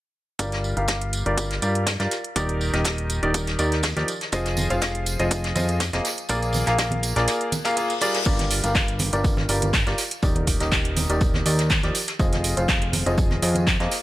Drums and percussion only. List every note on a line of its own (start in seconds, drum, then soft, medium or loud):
0.39 kick loud
0.39 closed hi-hat medium
0.39 tambourine medium
0.52 snare soft
0.52 closed hi-hat soft
0.64 tambourine medium
0.77 closed hi-hat soft
0.88 kick loud
0.88 snare loud
0.88 closed hi-hat medium
0.88 tambourine medium
1.01 closed hi-hat soft
1.13 closed hi-hat medium
1.13 tambourine medium
1.26 closed hi-hat soft
1.38 kick loud
1.38 closed hi-hat medium
1.38 tambourine medium
1.51 snare soft
1.51 closed hi-hat soft
1.62 closed hi-hat medium
1.62 tambourine medium
1.75 closed hi-hat soft
1.86 kick medium
1.86 snare loud
1.86 closed hi-hat medium
1.86 tambourine medium
1.99 snare soft
1.99 closed hi-hat soft
2.11 snare soft
2.11 closed hi-hat medium
2.11 tambourine medium
2.24 closed hi-hat soft
2.36 kick loud
2.36 closed hi-hat medium
2.36 tambourine medium
2.49 closed hi-hat soft
2.61 tambourine medium
2.74 snare soft
2.74 closed hi-hat soft
2.85 kick loud
2.85 snare loud
2.85 closed hi-hat medium
2.85 tambourine medium
2.98 closed hi-hat soft
3.10 closed hi-hat medium
3.10 tambourine medium
3.23 closed hi-hat soft
3.34 kick loud
3.34 closed hi-hat medium
3.34 tambourine medium
3.47 snare soft
3.47 closed hi-hat soft
3.59 closed hi-hat medium
3.59 tambourine medium
3.72 snare soft
3.72 closed hi-hat soft
3.83 kick loud
3.83 snare loud
3.83 closed hi-hat medium
3.83 tambourine medium
3.97 snare soft
3.97 closed hi-hat soft
4.08 closed hi-hat medium
4.08 tambourine medium
4.21 snare soft
4.21 closed hi-hat soft
4.32 kick loud
4.32 closed hi-hat medium
4.32 tambourine medium
4.32 tambourine soft
4.45 snare soft
4.45 closed hi-hat soft
4.45 tambourine soft
4.57 tambourine loud
4.57 tambourine medium
4.57 high conga medium
4.70 closed hi-hat soft
4.70 tambourine soft
4.81 kick loud
4.81 snare loud
4.81 closed hi-hat medium
4.81 tambourine medium
4.95 closed hi-hat soft
5.06 closed hi-hat medium
5.06 tambourine medium
5.19 closed hi-hat soft
5.19 tambourine soft
5.31 kick loud
5.31 closed hi-hat medium
5.31 tambourine medium
5.44 snare soft
5.44 closed hi-hat soft
5.55 closed hi-hat medium
5.55 tambourine medium
5.55 high conga medium
5.68 closed hi-hat soft
5.68 tambourine soft
5.80 kick loud
5.80 snare loud
5.80 closed hi-hat medium
5.80 tambourine medium
5.93 snare medium
5.93 closed hi-hat soft
6.05 snare soft
6.05 closed hi-hat medium
6.05 tambourine loud
6.05 tambourine medium
6.18 closed hi-hat soft
6.18 tambourine soft
6.29 kick loud
6.29 closed hi-hat medium
6.29 tambourine medium
6.42 closed hi-hat soft
6.42 tambourine soft
6.53 tambourine medium
6.54 tambourine loud
6.54 high conga medium
6.66 snare soft
6.66 closed hi-hat soft
6.66 tambourine soft
6.78 kick loud
6.78 snare loud
6.78 closed hi-hat medium
6.78 tambourine medium
6.91 closed hi-hat soft
6.91 high conga medium
7.03 closed hi-hat medium
7.03 tambourine medium
7.03 tambourine loud
7.16 snare soft
7.16 closed hi-hat soft
7.16 tambourine soft
7.28 snare medium
7.28 closed hi-hat medium
7.28 tambourine medium
7.41 closed hi-hat soft
7.52 closed hi-hat medium
7.52 tambourine medium
7.52 tambourine loud
7.52 high conga medium
7.64 snare loud
7.64 closed hi-hat soft
7.64 tambourine soft
7.64 tambourine medium
7.77 closed hi-hat medium
7.77 tambourine medium
7.90 closed hi-hat soft
7.90 tambourine medium
8.01 closed hi-hat medium
8.01 tambourine medium
8.14 snare soft
8.14 closed hi-hat soft
8.14 tambourine soft
8.26 kick loud
8.26 crash medium
8.26 tambourine soft
8.26 tambourine medium
8.39 snare soft
8.39 closed hi-hat medium
8.39 high conga medium
8.51 open hi-hat loud
8.51 tambourine medium
8.64 closed hi-hat medium
8.64 closed hi-hat soft
8.64 tambourine soft
8.75 kick loud
8.75 snare loud
8.75 clap loud
8.75 tambourine soft
8.75 tambourine medium
8.88 closed hi-hat medium
8.99 open hi-hat loud
8.99 tambourine medium
8.99 high conga medium
9.13 closed hi-hat medium
9.13 tambourine soft
9.24 kick loud
9.24 tambourine soft
9.24 tambourine medium
9.37 snare soft
9.37 high conga loud
9.49 open hi-hat loud
9.49 tambourine medium
9.62 closed hi-hat medium
9.62 tambourine soft
9.62 high conga medium
9.73 kick loud
9.73 snare loud
9.73 clap loud
9.73 tambourine medium
9.87 snare medium
9.87 closed hi-hat soft
9.98 snare soft
9.98 open hi-hat loud
9.98 tambourine medium
10.11 closed hi-hat medium
10.11 tambourine soft
10.22 kick loud
10.22 tambourine medium
10.36 closed hi-hat medium
10.36 high conga medium
10.47 kick medium
10.47 open hi-hat loud
10.47 tambourine medium
10.60 snare soft
10.60 closed hi-hat medium
10.60 tambourine soft
10.71 kick loud
10.71 snare loud
10.71 clap loud
10.71 tambourine medium
10.85 closed hi-hat medium
10.97 open hi-hat loud
10.97 tambourine loud
10.97 tambourine medium
10.97 high conga medium
11.10 closed hi-hat medium
11.10 tambourine soft
11.21 kick loud
11.21 tambourine medium
11.34 snare soft
11.34 high conga loud
11.46 open hi-hat loud
11.46 tambourine medium
11.59 snare soft
11.59 closed hi-hat medium
11.59 tambourine soft
11.70 kick loud
11.70 snare loud
11.70 clap loud
11.70 tambourine soft
11.70 tambourine medium
11.83 snare soft
11.83 closed hi-hat soft
11.95 open hi-hat loud
11.95 tambourine medium
12.07 snare medium
12.07 closed hi-hat medium
12.07 tambourine soft
12.19 kick loud
12.19 tambourine medium
12.33 snare soft
12.33 closed hi-hat soft
12.33 high conga medium
12.44 open hi-hat loud
12.44 tambourine medium
12.57 closed hi-hat medium
12.57 closed hi-hat soft
12.57 tambourine soft
12.69 kick loud
12.69 snare loud
12.69 clap loud
12.69 tambourine medium
12.82 closed hi-hat soft
12.93 open hi-hat loud
12.93 tambourine medium
12.93 high conga medium
13.06 closed hi-hat medium
13.06 tambourine soft
13.17 kick loud
13.17 tambourine medium
13.31 snare soft
13.31 high conga medium
13.42 open hi-hat loud
13.42 tambourine loud
13.42 tambourine medium
13.55 closed hi-hat medium
13.55 tambourine soft
13.55 high conga medium
13.67 kick loud
13.67 snare loud
13.67 clap loud
13.67 tambourine medium
13.67 tambourine soft
13.80 snare soft
13.80 closed hi-hat soft
13.91 snare soft
13.91 open hi-hat loud
13.91 tambourine medium